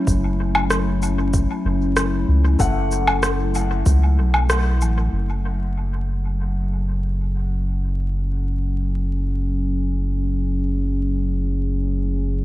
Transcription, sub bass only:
0, 0, Header, 1, 2, 480
1, 0, Start_track
1, 0, Key_signature, 3, "minor"
1, 0, Tempo, 631579
1, 55, Time_signature, 4, 2, 24, 8
1, 9460, End_track
2, 0, Start_track
2, 0, Title_t, "Sub bass"
2, 0, Program_c, 0, 38
2, 55, Note_on_c, 0, 30, 96
2, 1115, Note_off_c, 0, 30, 0
2, 1255, Note_on_c, 0, 30, 91
2, 1713, Note_off_c, 0, 30, 0
2, 1737, Note_on_c, 0, 37, 84
2, 1948, Note_off_c, 0, 37, 0
2, 1974, Note_on_c, 0, 30, 99
2, 2912, Note_off_c, 0, 30, 0
2, 2934, Note_on_c, 0, 37, 88
2, 3174, Note_on_c, 0, 35, 78
2, 3185, Note_off_c, 0, 37, 0
2, 3653, Note_on_c, 0, 33, 101
2, 3665, Note_off_c, 0, 35, 0
2, 3866, Note_off_c, 0, 33, 0
2, 3895, Note_on_c, 0, 30, 82
2, 9460, Note_off_c, 0, 30, 0
2, 9460, End_track
0, 0, End_of_file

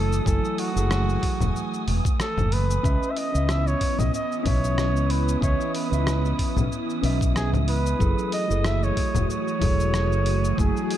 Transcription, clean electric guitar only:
0, 0, Header, 1, 2, 480
1, 0, Start_track
1, 0, Key_signature, 4, "minor"
1, 0, Tempo, 645161
1, 195, Time_signature, 4, 2, 24, 8
1, 8165, End_track
2, 0, Start_track
2, 0, Title_t, "Clean electric guitar"
2, 0, Program_c, 0, 27
2, 0, Note_on_c, 0, 54, 86
2, 0, Note_on_c, 0, 64, 83
2, 0, Note_on_c, 0, 69, 91
2, 0, Note_on_c, 0, 80, 75
2, 161, Note_off_c, 0, 54, 0
2, 166, Note_off_c, 0, 64, 0
2, 172, Note_off_c, 0, 80, 0
2, 177, Note_off_c, 0, 69, 0
2, 186, Note_on_c, 0, 54, 88
2, 192, Note_on_c, 0, 64, 79
2, 198, Note_on_c, 0, 80, 83
2, 203, Note_on_c, 0, 69, 99
2, 530, Note_off_c, 0, 54, 0
2, 533, Note_off_c, 0, 64, 0
2, 536, Note_off_c, 0, 80, 0
2, 539, Note_off_c, 0, 69, 0
2, 552, Note_on_c, 0, 54, 72
2, 562, Note_on_c, 0, 64, 64
2, 572, Note_on_c, 0, 68, 66
2, 584, Note_on_c, 0, 69, 80
2, 1362, Note_off_c, 0, 54, 0
2, 1367, Note_off_c, 0, 64, 0
2, 1372, Note_off_c, 0, 68, 0
2, 1378, Note_off_c, 0, 69, 0
2, 2107, Note_on_c, 0, 61, 94
2, 2112, Note_on_c, 0, 71, 84
2, 2118, Note_on_c, 0, 75, 76
2, 2123, Note_on_c, 0, 76, 93
2, 2450, Note_off_c, 0, 61, 0
2, 2453, Note_off_c, 0, 71, 0
2, 2456, Note_off_c, 0, 75, 0
2, 2458, Note_off_c, 0, 76, 0
2, 2471, Note_on_c, 0, 61, 73
2, 2481, Note_on_c, 0, 71, 62
2, 2493, Note_on_c, 0, 75, 67
2, 2505, Note_on_c, 0, 76, 82
2, 3281, Note_off_c, 0, 61, 0
2, 3287, Note_off_c, 0, 71, 0
2, 3292, Note_off_c, 0, 75, 0
2, 3297, Note_on_c, 0, 61, 84
2, 3298, Note_off_c, 0, 76, 0
2, 3308, Note_on_c, 0, 71, 80
2, 3319, Note_on_c, 0, 75, 76
2, 3331, Note_on_c, 0, 76, 93
2, 4000, Note_off_c, 0, 61, 0
2, 4005, Note_off_c, 0, 71, 0
2, 4011, Note_off_c, 0, 75, 0
2, 4017, Note_off_c, 0, 76, 0
2, 4024, Note_on_c, 0, 61, 89
2, 4030, Note_on_c, 0, 71, 81
2, 4036, Note_on_c, 0, 75, 82
2, 4040, Note_on_c, 0, 76, 97
2, 4369, Note_off_c, 0, 61, 0
2, 4372, Note_off_c, 0, 71, 0
2, 4375, Note_off_c, 0, 75, 0
2, 4377, Note_off_c, 0, 76, 0
2, 4389, Note_on_c, 0, 61, 76
2, 4399, Note_on_c, 0, 71, 68
2, 4409, Note_on_c, 0, 75, 64
2, 4420, Note_on_c, 0, 76, 80
2, 5200, Note_off_c, 0, 61, 0
2, 5205, Note_off_c, 0, 71, 0
2, 5211, Note_off_c, 0, 75, 0
2, 5216, Note_off_c, 0, 76, 0
2, 5217, Note_on_c, 0, 61, 88
2, 5227, Note_on_c, 0, 71, 77
2, 5238, Note_on_c, 0, 75, 79
2, 5249, Note_on_c, 0, 76, 94
2, 5920, Note_off_c, 0, 61, 0
2, 5925, Note_off_c, 0, 71, 0
2, 5931, Note_off_c, 0, 75, 0
2, 5936, Note_off_c, 0, 76, 0
2, 5941, Note_on_c, 0, 54, 91
2, 5947, Note_on_c, 0, 64, 84
2, 5953, Note_on_c, 0, 68, 89
2, 5958, Note_on_c, 0, 69, 100
2, 6288, Note_off_c, 0, 54, 0
2, 6291, Note_off_c, 0, 64, 0
2, 6294, Note_off_c, 0, 68, 0
2, 6296, Note_off_c, 0, 69, 0
2, 6307, Note_on_c, 0, 54, 77
2, 6318, Note_on_c, 0, 64, 68
2, 6328, Note_on_c, 0, 68, 65
2, 6340, Note_on_c, 0, 69, 76
2, 7119, Note_off_c, 0, 54, 0
2, 7125, Note_off_c, 0, 64, 0
2, 7130, Note_off_c, 0, 68, 0
2, 7134, Note_on_c, 0, 54, 85
2, 7136, Note_off_c, 0, 69, 0
2, 7146, Note_on_c, 0, 64, 78
2, 7156, Note_on_c, 0, 68, 74
2, 7167, Note_on_c, 0, 69, 93
2, 7839, Note_off_c, 0, 54, 0
2, 7844, Note_off_c, 0, 64, 0
2, 7849, Note_off_c, 0, 68, 0
2, 7855, Note_off_c, 0, 69, 0
2, 7863, Note_on_c, 0, 54, 82
2, 7868, Note_on_c, 0, 64, 82
2, 7874, Note_on_c, 0, 68, 79
2, 7880, Note_on_c, 0, 57, 94
2, 8165, Note_off_c, 0, 54, 0
2, 8165, Note_off_c, 0, 57, 0
2, 8165, Note_off_c, 0, 64, 0
2, 8165, Note_off_c, 0, 68, 0
2, 8165, End_track
0, 0, End_of_file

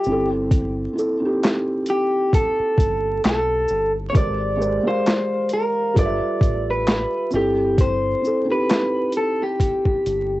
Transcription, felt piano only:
0, 0, Header, 1, 2, 480
1, 0, Start_track
1, 0, Key_signature, 0, "major"
1, 0, Tempo, 909091
1, 270, Time_signature, 4, 2, 24, 8
1, 5491, End_track
2, 0, Start_track
2, 0, Title_t, "Felt piano"
2, 0, Program_c, 0, 0
2, 0, Control_c, 0, 64, 127
2, 34, Note_on_c, 0, 60, 83
2, 38, Control_c, 0, 64, 0
2, 47, Note_on_c, 0, 64, 70
2, 62, Note_on_c, 0, 69, 90
2, 129, Control_c, 0, 64, 127
2, 428, Note_off_c, 0, 60, 0
2, 434, Note_off_c, 0, 64, 0
2, 442, Note_off_c, 0, 69, 0
2, 492, Note_on_c, 0, 60, 72
2, 504, Note_on_c, 0, 64, 68
2, 520, Note_on_c, 0, 69, 79
2, 588, Note_off_c, 0, 60, 0
2, 594, Note_off_c, 0, 64, 0
2, 602, Note_off_c, 0, 69, 0
2, 633, Note_on_c, 0, 60, 74
2, 644, Note_on_c, 0, 63, 54
2, 660, Note_on_c, 0, 67, 91
2, 675, Note_off_c, 0, 63, 0
2, 681, Note_on_c, 0, 64, 69
2, 1250, Note_off_c, 0, 60, 0
2, 1264, Note_off_c, 0, 67, 0
2, 1274, Note_off_c, 0, 64, 0
2, 2178, Note_on_c, 0, 56, 74
2, 2185, Note_on_c, 0, 67, 66
2, 2192, Note_on_c, 0, 70, 67
2, 2197, Control_c, 0, 64, 0
2, 2198, Note_on_c, 0, 72, 67
2, 2205, Note_on_c, 0, 74, 84
2, 2272, Control_c, 0, 64, 127
2, 2350, Note_off_c, 0, 56, 0
2, 2354, Note_off_c, 0, 67, 0
2, 2357, Note_off_c, 0, 70, 0
2, 2360, Note_off_c, 0, 72, 0
2, 2363, Note_off_c, 0, 74, 0
2, 2413, Note_on_c, 0, 56, 74
2, 2420, Note_on_c, 0, 67, 67
2, 2426, Note_on_c, 0, 70, 65
2, 2435, Note_on_c, 0, 72, 69
2, 2440, Note_on_c, 0, 74, 72
2, 2509, Note_off_c, 0, 56, 0
2, 2512, Note_off_c, 0, 67, 0
2, 2516, Note_off_c, 0, 70, 0
2, 2520, Note_off_c, 0, 72, 0
2, 2523, Note_off_c, 0, 74, 0
2, 2551, Note_on_c, 0, 56, 79
2, 2559, Note_on_c, 0, 67, 64
2, 2568, Note_on_c, 0, 70, 69
2, 2574, Note_on_c, 0, 72, 69
2, 2580, Note_on_c, 0, 77, 84
2, 3136, Note_on_c, 0, 55, 83
2, 3143, Note_off_c, 0, 56, 0
2, 3143, Note_on_c, 0, 65, 76
2, 3147, Note_off_c, 0, 67, 0
2, 3151, Note_on_c, 0, 69, 77
2, 3152, Note_off_c, 0, 70, 0
2, 3155, Note_off_c, 0, 72, 0
2, 3157, Note_on_c, 0, 71, 72
2, 3158, Note_off_c, 0, 77, 0
2, 3158, Control_c, 0, 64, 0
2, 3164, Note_on_c, 0, 74, 70
2, 3195, Note_off_c, 0, 74, 0
2, 3197, Note_on_c, 0, 76, 92
2, 3235, Control_c, 0, 64, 127
2, 3731, Note_off_c, 0, 55, 0
2, 3735, Note_off_c, 0, 65, 0
2, 3738, Note_off_c, 0, 69, 0
2, 3741, Note_off_c, 0, 71, 0
2, 3762, Note_off_c, 0, 76, 0
2, 3857, Note_on_c, 0, 60, 72
2, 3871, Note_on_c, 0, 64, 73
2, 3877, Control_c, 0, 64, 0
2, 3885, Note_on_c, 0, 69, 88
2, 3970, Control_c, 0, 64, 127
2, 4259, Note_off_c, 0, 60, 0
2, 4266, Note_off_c, 0, 64, 0
2, 4273, Note_off_c, 0, 69, 0
2, 4339, Note_on_c, 0, 60, 64
2, 4353, Note_on_c, 0, 64, 62
2, 4365, Note_on_c, 0, 69, 76
2, 4432, Note_off_c, 0, 60, 0
2, 4439, Note_off_c, 0, 64, 0
2, 4445, Note_off_c, 0, 69, 0
2, 4461, Note_on_c, 0, 60, 71
2, 4473, Note_on_c, 0, 63, 51
2, 4489, Note_on_c, 0, 67, 84
2, 4508, Note_on_c, 0, 64, 70
2, 4509, Note_off_c, 0, 63, 0
2, 5084, Note_off_c, 0, 60, 0
2, 5098, Note_off_c, 0, 67, 0
2, 5107, Note_off_c, 0, 64, 0
2, 5491, End_track
0, 0, End_of_file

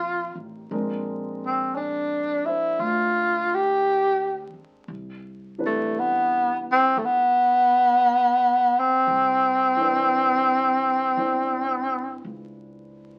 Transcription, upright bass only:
0, 0, Header, 1, 3, 480
1, 0, Start_track
1, 0, Key_signature, 0, "major"
1, 0, Tempo, 1047120
1, 325, Time_signature, 4, 2, 24, 8
1, 3683, Tempo, 1056338
1, 6025, End_track
2, 0, Start_track
2, 0, Title_t, "Upright bass"
2, 0, Program_c, 0, 32
2, 0, Note_on_c, 0, 34, 66
2, 140, Note_off_c, 0, 34, 0
2, 162, Note_on_c, 0, 33, 54
2, 313, Note_off_c, 0, 33, 0
2, 325, Note_on_c, 0, 34, 64
2, 1270, Note_off_c, 0, 34, 0
2, 1279, Note_on_c, 0, 38, 65
2, 2059, Note_off_c, 0, 38, 0
2, 2237, Note_on_c, 0, 36, 67
2, 3180, Note_off_c, 0, 36, 0
2, 3194, Note_on_c, 0, 31, 70
2, 4136, Note_off_c, 0, 31, 0
2, 4154, Note_on_c, 0, 36, 68
2, 5096, Note_off_c, 0, 36, 0
2, 5108, Note_on_c, 0, 31, 63
2, 5577, Note_off_c, 0, 31, 0
2, 5595, Note_on_c, 0, 37, 62
2, 6025, Note_off_c, 0, 37, 0
2, 6025, End_track
3, 0, Start_track
3, 0, Title_t, "Muted upright bass strokes"
3, 2079, Note_on_c, 9, 29, 32
3, 2124, Note_off_c, 9, 29, 0
3, 6025, End_track
0, 0, End_of_file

